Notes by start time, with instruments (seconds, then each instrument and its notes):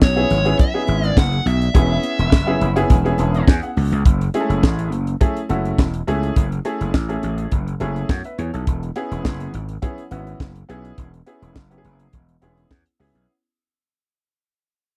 0.02 slap bass B1, lead electric guitar C#5, kick, snare, high conga
0.16 grand piano B3 C#4 E4 G#4, closed hi-hat
0.30 slap bass G#1, closed hi-hat, low conga
0.45 grand piano B3 C#4 E4 G#4, closed hi-hat
0.59 lead electric guitar E5, kick, closed hi-hat, muted conga, low conga
0.74 grand piano B3 C#4 D#4 G#4
0.81 grand piano E4
0.87 slap bass G#1, closed hi-hat, muted conga
1.04 lead electric guitar D5, closed hi-hat
1.17 slap bass F#1, lead electric guitar F#5, kick, snare, high conga
1.32 closed hi-hat
1.46 slap bass B1, lead electric guitar E5, closed hi-hat, high conga
1.61 closed hi-hat
1.74 slap bass E1, grand piano B3 C#4 E4 G#4, kick, closed hi-hat
2.03 closed hi-hat, muted conga
2.19 slap bass E1, closed hi-hat
2.32 slap bass F#1, kick, snare, high conga
2.47 grand piano B3 C#4 E4 G#4
2.61 slap bass F#1, grand piano B5, closed hi-hat, low conga
2.76 grand piano B3 C#4 E4 G#4, closed hi-hat
2.90 slap bass E1, grand piano G#5, kick, closed hi-hat, muted conga, low conga
3.05 grand piano B3 C#4 E4 G#4, closed hi-hat
3.18 slap bass E1, grand piano A5, closed hi-hat, muted conga
3.34 closed hi-hat
3.48 slap bass E2, grand piano G#5, kick, snare, high conga
3.63 grand piano F#5, closed hi-hat
3.77 slap bass C#2, open hi-hat, high conga
3.92 slap bass C#2, closed hi-hat
4.05 slap bass F#1, kick, closed hi-hat
4.21 closed hi-hat
4.34 grand piano G#3 C#4 E4 G#4, closed hi-hat, muted conga
4.41 grand piano A3
4.50 slap bass F#1, closed hi-hat
4.63 slap bass A1, kick, snare, high conga
4.79 closed hi-hat
4.92 slap bass F#1, closed hi-hat
5.07 closed hi-hat
5.21 grand piano A3 C#4 E4 G#4, kick, closed hi-hat, muted conga, low conga
5.37 closed hi-hat
5.49 slap bass F#1, grand piano A3 C#4 E4 F#4, closed hi-hat, muted conga
5.65 closed hi-hat
5.78 slap bass E1, kick, snare, high conga
5.94 closed hi-hat
6.07 slap bass C#2, grand piano A3 C#4 E4 G#4, closed hi-hat, high conga
6.23 closed hi-hat
6.36 slap bass F#1, kick, closed hi-hat
6.52 closed hi-hat
6.65 grand piano A3 C#4 E4 G#4, closed hi-hat, muted conga
6.81 slap bass F#1, closed hi-hat
6.94 slap bass A1, kick, snare, high conga
7.09 grand piano A3 C#4 E4 G#4, closed hi-hat
7.23 slap bass A1, closed hi-hat, muted conga
7.38 closed hi-hat
7.52 slap bass F#1, kick, closed hi-hat, muted conga, low conga
7.68 closed hi-hat
7.80 slap bass F#1, grand piano A3 C#4 E4 G#4, closed hi-hat, muted conga
7.96 closed hi-hat
8.09 slap bass F#2, grand piano C#5 F#5, kick, snare, high conga
8.24 grand piano B4 E5, closed hi-hat
8.38 slap bass E2, grand piano G#4 C#5, closed hi-hat, high conga
8.54 slap bass B1, grand piano E4 A4, closed hi-hat
8.67 slap bass E1, kick, closed hi-hat
8.83 closed hi-hat
8.96 grand piano B3 C#4 E4 G#4, closed hi-hat, muted conga
9.11 slap bass E1, closed hi-hat
9.25 slap bass F#1, kick, snare, high conga
9.40 closed hi-hat
9.54 slap bass G#1, closed hi-hat
9.69 closed hi-hat
9.82 grand piano B3 C#4 E4 G#4, kick, closed hi-hat, muted conga, low conga
9.98 closed hi-hat
10.11 slap bass G#1, grand piano B3 C#4 E4 F#4, closed hi-hat, muted conga
10.27 closed hi-hat
10.40 slap bass F#1, kick, snare, high conga
10.56 closed hi-hat
10.69 slap bass B1, grand piano B3 C#4 E4 G#4, closed hi-hat, high conga
10.85 closed hi-hat
10.98 slap bass E1, kick, closed hi-hat
11.14 closed hi-hat
11.26 grand piano B3 C#4 E4 G#4, closed hi-hat, muted conga
11.42 slap bass E1, closed hi-hat
11.56 slap bass F#1, kick, snare, high conga
11.71 grand piano B3 C#4 E4 G4, closed hi-hat
11.78 grand piano G#4
11.85 slap bass F#1, closed hi-hat, muted conga
12.00 closed hi-hat
12.13 slap bass E1, kick, closed hi-hat, muted conga, low conga
12.29 closed hi-hat
12.42 slap bass E1, grand piano B3 C#4 E4 G#4, closed hi-hat, muted conga
12.57 closed hi-hat
12.71 slap bass E2, kick, snare, high conga
12.86 closed hi-hat
13.00 slap bass C#2, grand piano B3 C#4 E4 G#4, open hi-hat, high conga
13.15 slap bass B1, high conga